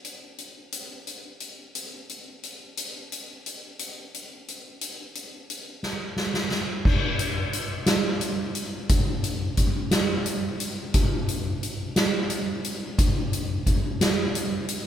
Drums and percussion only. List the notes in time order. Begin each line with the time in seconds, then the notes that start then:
0.05 closed hi-hat
0.38 closed hi-hat
0.72 closed hi-hat
1.07 closed hi-hat
1.40 closed hi-hat
1.75 closed hi-hat
2.09 closed hi-hat
2.43 closed hi-hat
2.77 closed hi-hat
3.12 closed hi-hat
3.46 closed hi-hat
3.79 closed hi-hat
4.14 closed hi-hat
4.48 closed hi-hat
4.81 closed hi-hat
5.15 closed hi-hat
5.50 closed hi-hat
5.83 snare
6.17 snare
6.34 snare
6.51 snare
6.85 kick, crash
7.19 closed hi-hat
7.53 closed hi-hat
7.86 snare, closed hi-hat
8.21 closed hi-hat
8.55 closed hi-hat
8.89 kick, closed hi-hat
9.24 closed hi-hat
9.57 kick, closed hi-hat
9.91 snare, closed hi-hat
10.26 closed hi-hat
10.60 closed hi-hat
10.94 kick, closed hi-hat
11.28 closed hi-hat
11.63 closed hi-hat
11.96 snare, closed hi-hat
12.30 closed hi-hat
12.64 closed hi-hat
12.99 kick, closed hi-hat
13.33 closed hi-hat
13.66 kick, closed hi-hat
14.01 snare, closed hi-hat
14.35 closed hi-hat
14.68 closed hi-hat